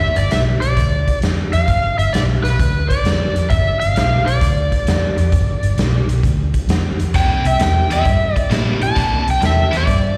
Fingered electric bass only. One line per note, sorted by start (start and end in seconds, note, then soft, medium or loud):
0.16 0.27 G1 medium
0.32 0.54 B1 medium
0.62 0.73 B1 medium
0.77 1.10 D2 medium
1.23 1.45 F2 medium
1.54 1.64 F2 medium
1.68 1.90 G1 medium
1.99 2.09 G1 medium
2.13 2.36 B1 medium
2.44 2.55 B1 medium
2.59 2.92 D2 medium
3.04 3.27 F2 medium
3.36 3.46 F2 medium
3.50 3.73 G1 medium
3.81 3.92 G1 medium
3.96 4.18 B1 medium
4.27 4.38 B1 medium
4.41 4.74 D2 medium
4.88 5.10 F2 medium
5.19 5.29 F2 medium
5.32 5.54 G1 medium
5.63 5.73 G1 medium
5.78 6.00 B1 medium
6.08 6.19 B1 medium
6.23 6.56 D2 medium
6.68 6.90 F2 medium
6.99 7.10 F2 medium
7.14 7.36 C2 medium
7.45 7.56 C2 medium
7.90 8.01 E2 medium
8.05 8.38 G2 medium
8.51 8.73 A#2 medium
8.82 8.93 A#2 medium
8.96 9.19 C2 medium
9.27 9.38 C2 medium
9.42 9.64 E2 medium
9.73 9.84 E2 medium
9.87 10.17 G2 medium